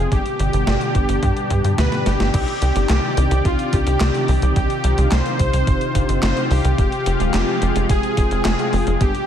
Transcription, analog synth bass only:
0.12 0.22 G1 loud
0.39 0.49 G1 medium
0.53 0.63 G1 medium
0.67 0.77 G1 loud
0.95 1.05 G1 medium
1.09 1.19 G1 medium
1.23 1.33 G2 loud
1.51 1.61 G2 medium
1.64 1.74 G2 medium
1.78 1.88 D2 loud
2.06 2.16 G1 medium
2.20 2.30 G1 medium
2.34 2.44 C2 loud
2.62 2.72 C2 medium
2.76 2.86 G1 medium
2.90 3.00 C2 loud
3.17 3.27 C2 loud
3.31 3.41 C2 medium
3.45 3.55 C2 loud
3.73 3.83 C2 loud
3.87 3.97 C2 medium
4.01 4.11 C2 loud
4.28 4.38 C2 medium
4.42 4.52 C2 medium
4.56 4.66 C2 loud
4.84 4.94 C2 medium
4.98 5.08 C2 medium
5.12 5.22 C2 loud
5.40 5.50 C2 loud
5.53 5.63 C2 medium
5.67 5.77 G1 loud
5.95 6.05 G1 loud
6.09 6.19 G1 medium
6.23 6.33 G1 loud
6.51 6.61 C2 medium
6.65 6.75 C2 medium
6.78 6.88 F1 loud
7.06 7.16 F1 medium
7.20 7.30 D#1 medium
7.34 7.44 F1 loud
7.62 7.72 F1 loud
7.76 7.86 F1 medium
7.90 8.00 F1 loud
8.17 8.27 F1 loud
8.31 8.41 F1 medium
8.45 8.55 F1 loud
8.73 8.83 F1 medium
8.87 8.97 F1 medium
9.01 9.11 G1 loud

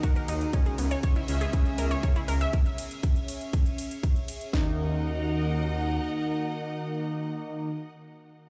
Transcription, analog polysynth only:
0.00 0.50 D#3 loud
0.00 0.50 A#3 medium
0.00 0.50 D#4 loud
0.53 1.25 C#3 medium
0.53 1.25 G#3 medium
0.53 1.25 C#4 medium
1.28 2.50 C#3 loud
1.28 2.50 G#3 medium
1.28 2.50 C#4 loud
4.53 7.70 D#3 medium
4.53 7.70 A#3 medium
4.53 7.70 D#4 loud

